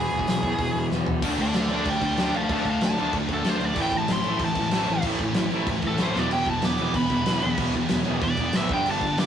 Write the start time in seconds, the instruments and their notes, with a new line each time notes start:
Already playing: overdriven electric guitar E2, lead electric guitar G#4 G#5
0.00 overdriven electric guitar B2 E3
0.12 picked electric bass E1
0.19 kick
0.27 picked electric bass B1, snare, open hi-hat
0.43 picked electric bass E1, overdriven electric guitar B2 E3, kick
0.48 overdriven electric guitar E2
0.58 picked electric bass E1, kick, open hi-hat
0.75 picked electric bass E1
0.90 picked electric bass E1, overdriven electric guitar E2 B2, snare
0.95 overdriven electric guitar E3
1.06 picked electric bass E1, floor tom
1.22 picked electric bass D2, distorted electric guitar D3 A3 D4 F4, overdriven electric guitar D3 A3 D4, kick, crash
1.38 picked electric bass D2, overdriven electric guitar D3 A3, lead electric guitar A4 D5, kick, crash
1.54 picked electric bass D2, overdriven electric guitar D3 A3, lead electric guitar A4 D5, snare, crash
1.70 picked electric bass D2, overdriven electric guitar D3 A3 D4, distorted electric guitar D3 A3 D4 F4, lead electric guitar A4 D5, crash
1.85 picked electric bass D2, overdriven electric guitar D3 A3, lead electric guitar D5, kick, crash
1.89 lead electric guitar G5
2.02 picked electric bass D2, overdriven electric guitar D3 A3, lead electric guitar G5, kick, crash
2.06 lead electric guitar D5
2.17 picked electric bass D2, distorted electric guitar D3 A3 D4 F4, overdriven electric guitar D3 A3 D4, snare, crash
2.23 lead electric guitar D5 G5
2.34 picked electric bass D2, overdriven electric guitar D3 A3, lead electric guitar F5 A5, crash
2.49 picked electric bass D2, distorted electric guitar D3 A3 D4 F4, overdriven electric guitar D3 A3 D4, lead electric guitar F5, kick, crash
2.53 lead electric guitar A5
2.65 picked electric bass D2, overdriven electric guitar D3 A3, kick, crash
2.70 lead electric guitar F5 A5
2.81 picked electric bass D2, overdriven electric guitar D3 A3, snare, crash
2.86 lead electric guitar A5
2.98 picked electric bass D2, overdriven electric guitar D3 A3 D4, distorted electric guitar D3 A3 D4 F4, crash
3.13 picked electric bass D2, overdriven electric guitar D3 A3, kick, crash
3.29 picked electric bass D2, overdriven electric guitar D3 A3, kick, crash
3.34 lead electric guitar A4
3.44 picked electric bass D2, distorted electric guitar D3 A3 D4 F4, overdriven electric guitar D3 A3 D4, snare, crash
3.49 lead electric guitar C5
3.60 picked electric bass D2, overdriven electric guitar D3 A3, crash
3.65 lead electric guitar D5
3.75 picked electric bass A1, distorted electric guitar A2 E3 A3 C4 E4, overdriven electric guitar A2 E3 A3, kick, crash
3.82 lead electric guitar G5
3.91 picked electric bass A1, overdriven electric guitar A2 E3, kick, crash
3.97 lead electric guitar A5
4.08 picked electric bass A1, overdriven electric guitar A2 E3, snare, crash
4.12 lead electric guitar C6
4.24 picked electric bass A1, overdriven electric guitar A2 E3 A3, distorted electric guitar A2 E3 A3 C4 E4, crash
4.39 picked electric bass A1, overdriven electric guitar A2 E3, kick, crash
4.45 lead electric guitar A5
4.55 picked electric bass A1, overdriven electric guitar A2 E3, kick, crash
4.70 picked electric bass A1, distorted electric guitar A2 E3 A3, overdriven electric guitar A2 E3 A3, snare, crash
4.74 distorted electric guitar C4 E4
4.87 picked electric bass A1, overdriven electric guitar A2 E3, crash
5.02 picked electric bass A1, distorted electric guitar A2 E3 A3, overdriven electric guitar A2, kick, crash
5.06 overdriven electric guitar E3 A3, distorted electric guitar C4 E4
5.18 picked electric bass A1, overdriven electric guitar A2, kick, crash
5.23 overdriven electric guitar E3
5.34 picked electric bass A1, overdriven electric guitar A2, snare, crash
5.38 overdriven electric guitar E3
5.50 picked electric bass A1, distorted electric guitar A2 E3 A3 C4 E4, overdriven electric guitar A2 E3 A3, crash
5.66 picked electric bass A1, overdriven electric guitar A2 E3, kick, crash
5.82 picked electric bass A1, overdriven electric guitar A2 E3, kick, crash
5.87 lead electric guitar A4
5.98 picked electric bass A1, distorted electric guitar A2 E3 A3 C4 E4, overdriven electric guitar A2 E3 A3, snare, crash
6.02 lead electric guitar C5
6.14 picked electric bass E1, overdriven electric guitar E2 B2 E3, distorted electric guitar E3 G3 B3 E4, snare
6.19 lead electric guitar D5
6.31 picked electric bass E1, overdriven electric guitar E2 B2 E3, lead electric guitar G5, crash
6.46 picked electric bass E1, overdriven electric guitar E2 B2, kick, crash
6.50 lead electric guitar A5
6.62 picked electric bass E1, overdriven electric guitar E2 B2, distorted electric guitar E3 G3 B3 E4, lead electric guitar D6, snare, crash
6.78 picked electric bass E1, overdriven electric guitar E2 B2 E3, crash
6.93 picked electric bass E1, overdriven electric guitar E2 B2, lead electric guitar B5, kick, crash
7.09 picked electric bass E1, overdriven electric guitar E2 B2, distorted electric guitar G3 B3 E4, kick, crash
7.13 distorted electric guitar E3
7.26 picked electric bass E1, overdriven electric guitar E2 B2 E3, snare, crash
7.42 picked electric bass E1, overdriven electric guitar E2 B2, distorted electric guitar E3 G3 B3 E4, crash
7.57 picked electric bass E1, overdriven electric guitar E2 B2 E3, kick, crash
7.73 picked electric bass E1, overdriven electric guitar E2 B2, kick, crash
7.89 picked electric bass E1, overdriven electric guitar E2 B2, distorted electric guitar E3 G3 B3 E4, snare, crash
8.05 picked electric bass E1, overdriven electric guitar E2 B2 E3, crash
8.21 picked electric bass E1, overdriven electric guitar E2 B2, lead electric guitar D5, kick, crash
8.37 picked electric bass E1, overdriven electric guitar E2 B2, distorted electric guitar E3 G3 B3 E4, kick, crash
8.53 picked electric bass A1, overdriven electric guitar E2 B2, snare, crash
8.57 overdriven electric guitar E3, lead electric guitar E5
8.69 picked electric bass G1, distorted electric guitar G2 D3 G3 B3 D4, overdriven electric guitar G2 D3 G3, kick, crash
8.73 lead electric guitar G5
8.86 picked electric bass G1, overdriven electric guitar G2 D3 G3, crash
8.91 lead electric guitar A5
9.01 picked electric bass G1, overdriven electric guitar G2 D3, kick, crash
9.17 picked electric bass G1, distorted electric guitar G2 D3 G3 B3 D4, overdriven electric guitar G2 D3, lead electric guitar D6, snare, crash